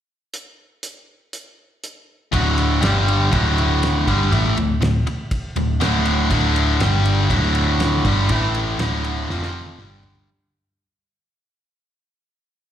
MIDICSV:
0, 0, Header, 1, 6, 480
1, 0, Start_track
1, 0, Tempo, 497925
1, 319, Time_signature, 4, 2, 24, 8
1, 12256, End_track
2, 0, Start_track
2, 0, Title_t, "Overdriven electric guitar"
2, 0, Program_c, 0, 29
2, 2234, Note_on_c, 0, 38, 101
2, 2246, Note_on_c, 0, 45, 91
2, 2256, Note_on_c, 0, 50, 96
2, 2708, Note_off_c, 0, 38, 0
2, 2708, Note_off_c, 0, 50, 0
2, 2712, Note_on_c, 0, 43, 96
2, 2716, Note_off_c, 0, 45, 0
2, 2719, Note_on_c, 0, 50, 90
2, 2724, Note_on_c, 0, 55, 97
2, 3183, Note_off_c, 0, 43, 0
2, 3187, Note_on_c, 0, 38, 93
2, 3193, Note_off_c, 0, 50, 0
2, 3196, Note_off_c, 0, 55, 0
2, 3197, Note_on_c, 0, 45, 91
2, 3204, Note_on_c, 0, 50, 99
2, 3907, Note_off_c, 0, 38, 0
2, 3912, Note_off_c, 0, 45, 0
2, 3916, Note_off_c, 0, 50, 0
2, 3924, Note_on_c, 0, 43, 88
2, 3931, Note_on_c, 0, 50, 91
2, 3937, Note_on_c, 0, 55, 94
2, 4156, Note_off_c, 0, 43, 0
2, 4159, Note_off_c, 0, 50, 0
2, 4159, Note_on_c, 0, 45, 98
2, 4163, Note_off_c, 0, 55, 0
2, 4167, Note_on_c, 0, 52, 103
2, 4178, Note_on_c, 0, 57, 111
2, 4393, Note_off_c, 0, 45, 0
2, 4397, Note_off_c, 0, 52, 0
2, 4403, Note_off_c, 0, 57, 0
2, 4404, Note_on_c, 0, 38, 60
2, 4408, Note_on_c, 0, 45, 83
2, 4595, Note_off_c, 0, 38, 0
2, 4597, Note_off_c, 0, 45, 0
2, 4641, Note_on_c, 0, 38, 67
2, 4645, Note_on_c, 0, 45, 69
2, 4833, Note_off_c, 0, 38, 0
2, 4835, Note_off_c, 0, 45, 0
2, 5364, Note_on_c, 0, 38, 72
2, 5364, Note_on_c, 0, 45, 75
2, 5554, Note_off_c, 0, 38, 0
2, 5554, Note_off_c, 0, 45, 0
2, 5591, Note_on_c, 0, 38, 98
2, 5595, Note_on_c, 0, 45, 108
2, 5602, Note_on_c, 0, 50, 119
2, 6068, Note_off_c, 0, 38, 0
2, 6069, Note_off_c, 0, 45, 0
2, 6073, Note_off_c, 0, 50, 0
2, 6078, Note_on_c, 0, 38, 92
2, 6084, Note_on_c, 0, 45, 85
2, 6089, Note_on_c, 0, 50, 110
2, 6551, Note_off_c, 0, 38, 0
2, 6553, Note_off_c, 0, 45, 0
2, 6556, Note_off_c, 0, 50, 0
2, 6560, Note_on_c, 0, 43, 108
2, 6567, Note_on_c, 0, 50, 101
2, 6569, Note_on_c, 0, 55, 118
2, 7024, Note_off_c, 0, 43, 0
2, 7028, Note_on_c, 0, 38, 94
2, 7029, Note_off_c, 0, 50, 0
2, 7033, Note_on_c, 0, 45, 98
2, 7036, Note_off_c, 0, 55, 0
2, 7043, Note_on_c, 0, 50, 102
2, 7745, Note_off_c, 0, 38, 0
2, 7747, Note_off_c, 0, 45, 0
2, 7752, Note_off_c, 0, 50, 0
2, 7762, Note_on_c, 0, 43, 83
2, 7773, Note_on_c, 0, 50, 85
2, 7780, Note_on_c, 0, 55, 92
2, 7992, Note_off_c, 0, 43, 0
2, 7997, Note_off_c, 0, 50, 0
2, 7997, Note_on_c, 0, 45, 88
2, 8001, Note_off_c, 0, 55, 0
2, 8010, Note_on_c, 0, 52, 109
2, 8013, Note_on_c, 0, 57, 97
2, 8469, Note_off_c, 0, 45, 0
2, 8475, Note_off_c, 0, 52, 0
2, 8476, Note_on_c, 0, 38, 101
2, 8477, Note_off_c, 0, 57, 0
2, 8481, Note_on_c, 0, 45, 97
2, 8490, Note_on_c, 0, 50, 96
2, 8948, Note_off_c, 0, 38, 0
2, 8951, Note_off_c, 0, 45, 0
2, 8955, Note_off_c, 0, 50, 0
2, 8963, Note_on_c, 0, 41, 91
2, 8974, Note_on_c, 0, 48, 100
2, 8976, Note_on_c, 0, 53, 102
2, 9432, Note_off_c, 0, 41, 0
2, 9438, Note_off_c, 0, 48, 0
2, 9438, Note_on_c, 0, 43, 95
2, 9439, Note_off_c, 0, 53, 0
2, 9448, Note_on_c, 0, 50, 106
2, 9456, Note_on_c, 0, 55, 107
2, 9910, Note_off_c, 0, 43, 0
2, 9915, Note_off_c, 0, 50, 0
2, 9919, Note_off_c, 0, 55, 0
2, 12256, End_track
3, 0, Start_track
3, 0, Title_t, "Picked electric bass"
3, 0, Program_c, 1, 34
3, 2243, Note_on_c, 1, 26, 91
3, 2689, Note_off_c, 1, 26, 0
3, 2723, Note_on_c, 1, 31, 98
3, 3170, Note_off_c, 1, 31, 0
3, 3208, Note_on_c, 1, 26, 91
3, 3887, Note_off_c, 1, 26, 0
3, 3925, Note_on_c, 1, 31, 91
3, 4147, Note_off_c, 1, 31, 0
3, 4165, Note_on_c, 1, 33, 94
3, 4387, Note_off_c, 1, 33, 0
3, 4402, Note_on_c, 1, 26, 88
3, 4625, Note_off_c, 1, 26, 0
3, 4639, Note_on_c, 1, 26, 79
3, 4863, Note_off_c, 1, 26, 0
3, 5355, Note_on_c, 1, 26, 78
3, 5581, Note_off_c, 1, 26, 0
3, 5598, Note_on_c, 1, 26, 94
3, 6044, Note_off_c, 1, 26, 0
3, 6074, Note_on_c, 1, 26, 102
3, 6522, Note_off_c, 1, 26, 0
3, 6555, Note_on_c, 1, 31, 102
3, 7002, Note_off_c, 1, 31, 0
3, 7036, Note_on_c, 1, 26, 98
3, 7717, Note_off_c, 1, 26, 0
3, 7757, Note_on_c, 1, 31, 101
3, 7980, Note_off_c, 1, 31, 0
3, 7993, Note_on_c, 1, 33, 98
3, 8441, Note_off_c, 1, 33, 0
3, 8473, Note_on_c, 1, 26, 104
3, 8921, Note_off_c, 1, 26, 0
3, 8952, Note_on_c, 1, 29, 91
3, 9400, Note_off_c, 1, 29, 0
3, 9441, Note_on_c, 1, 31, 86
3, 9885, Note_off_c, 1, 31, 0
3, 12256, End_track
4, 0, Start_track
4, 0, Title_t, "Muted overdriven electric guitar strokes"
4, 4887, Note_on_c, 9, 29, 68
4, 4983, Note_off_c, 9, 29, 0
4, 12256, End_track
5, 0, Start_track
5, 0, Title_t, "Muted picked electric bass strokes"
5, 4885, Note_on_c, 9, 29, 44
5, 4981, Note_off_c, 9, 29, 0
5, 12256, End_track
6, 0, Start_track
6, 0, Title_t, "Drums"
6, 324, Note_on_c, 9, 42, 60
6, 420, Note_off_c, 9, 42, 0
6, 800, Note_on_c, 9, 42, 58
6, 897, Note_off_c, 9, 42, 0
6, 1284, Note_on_c, 9, 42, 52
6, 1380, Note_off_c, 9, 42, 0
6, 1770, Note_on_c, 9, 42, 48
6, 1866, Note_off_c, 9, 42, 0
6, 2246, Note_on_c, 9, 36, 107
6, 2250, Note_on_c, 9, 51, 94
6, 2343, Note_off_c, 9, 36, 0
6, 2346, Note_off_c, 9, 51, 0
6, 2484, Note_on_c, 9, 51, 73
6, 2581, Note_off_c, 9, 51, 0
6, 2724, Note_on_c, 9, 51, 98
6, 2734, Note_on_c, 9, 38, 122
6, 2821, Note_off_c, 9, 51, 0
6, 2830, Note_off_c, 9, 38, 0
6, 2972, Note_on_c, 9, 51, 65
6, 3069, Note_off_c, 9, 51, 0
6, 3207, Note_on_c, 9, 51, 98
6, 3210, Note_on_c, 9, 36, 108
6, 3304, Note_off_c, 9, 51, 0
6, 3306, Note_off_c, 9, 36, 0
6, 3452, Note_on_c, 9, 51, 59
6, 3549, Note_off_c, 9, 51, 0
6, 3691, Note_on_c, 9, 51, 87
6, 3701, Note_on_c, 9, 38, 104
6, 3787, Note_off_c, 9, 51, 0
6, 3797, Note_off_c, 9, 38, 0
6, 3928, Note_on_c, 9, 36, 109
6, 3931, Note_on_c, 9, 51, 77
6, 4025, Note_off_c, 9, 36, 0
6, 4027, Note_off_c, 9, 51, 0
6, 4168, Note_on_c, 9, 36, 102
6, 4168, Note_on_c, 9, 51, 84
6, 4265, Note_off_c, 9, 36, 0
6, 4265, Note_off_c, 9, 51, 0
6, 4410, Note_on_c, 9, 51, 75
6, 4506, Note_off_c, 9, 51, 0
6, 4647, Note_on_c, 9, 51, 96
6, 4657, Note_on_c, 9, 38, 114
6, 4744, Note_off_c, 9, 51, 0
6, 4753, Note_off_c, 9, 38, 0
6, 4887, Note_on_c, 9, 51, 66
6, 4984, Note_off_c, 9, 51, 0
6, 5121, Note_on_c, 9, 51, 93
6, 5123, Note_on_c, 9, 36, 105
6, 5217, Note_off_c, 9, 51, 0
6, 5219, Note_off_c, 9, 36, 0
6, 5360, Note_on_c, 9, 51, 68
6, 5457, Note_off_c, 9, 51, 0
6, 5602, Note_on_c, 9, 51, 86
6, 5612, Note_on_c, 9, 38, 108
6, 5699, Note_off_c, 9, 51, 0
6, 5708, Note_off_c, 9, 38, 0
6, 5837, Note_on_c, 9, 51, 67
6, 5934, Note_off_c, 9, 51, 0
6, 6079, Note_on_c, 9, 36, 97
6, 6079, Note_on_c, 9, 51, 97
6, 6175, Note_off_c, 9, 36, 0
6, 6175, Note_off_c, 9, 51, 0
6, 6324, Note_on_c, 9, 51, 74
6, 6420, Note_off_c, 9, 51, 0
6, 6559, Note_on_c, 9, 51, 90
6, 6568, Note_on_c, 9, 38, 109
6, 6655, Note_off_c, 9, 51, 0
6, 6665, Note_off_c, 9, 38, 0
6, 6800, Note_on_c, 9, 51, 64
6, 6896, Note_off_c, 9, 51, 0
6, 7039, Note_on_c, 9, 36, 98
6, 7041, Note_on_c, 9, 51, 97
6, 7135, Note_off_c, 9, 36, 0
6, 7137, Note_off_c, 9, 51, 0
6, 7276, Note_on_c, 9, 51, 68
6, 7373, Note_off_c, 9, 51, 0
6, 7519, Note_on_c, 9, 51, 95
6, 7529, Note_on_c, 9, 38, 105
6, 7616, Note_off_c, 9, 51, 0
6, 7625, Note_off_c, 9, 38, 0
6, 7759, Note_on_c, 9, 36, 102
6, 7761, Note_on_c, 9, 51, 74
6, 7771, Note_on_c, 9, 38, 34
6, 7855, Note_off_c, 9, 36, 0
6, 7857, Note_off_c, 9, 51, 0
6, 7867, Note_off_c, 9, 38, 0
6, 7992, Note_on_c, 9, 51, 101
6, 7997, Note_on_c, 9, 36, 111
6, 8089, Note_off_c, 9, 51, 0
6, 8093, Note_off_c, 9, 36, 0
6, 8238, Note_on_c, 9, 51, 75
6, 8334, Note_off_c, 9, 51, 0
6, 8475, Note_on_c, 9, 51, 101
6, 8485, Note_on_c, 9, 38, 114
6, 8572, Note_off_c, 9, 51, 0
6, 8581, Note_off_c, 9, 38, 0
6, 8719, Note_on_c, 9, 51, 66
6, 8816, Note_off_c, 9, 51, 0
6, 8966, Note_on_c, 9, 38, 58
6, 9063, Note_off_c, 9, 38, 0
6, 9086, Note_on_c, 9, 38, 58
6, 9183, Note_off_c, 9, 38, 0
6, 9317, Note_on_c, 9, 48, 65
6, 9414, Note_off_c, 9, 48, 0
6, 9433, Note_on_c, 9, 47, 79
6, 9529, Note_off_c, 9, 47, 0
6, 9672, Note_on_c, 9, 43, 96
6, 9768, Note_off_c, 9, 43, 0
6, 9787, Note_on_c, 9, 43, 95
6, 9883, Note_off_c, 9, 43, 0
6, 12256, End_track
0, 0, End_of_file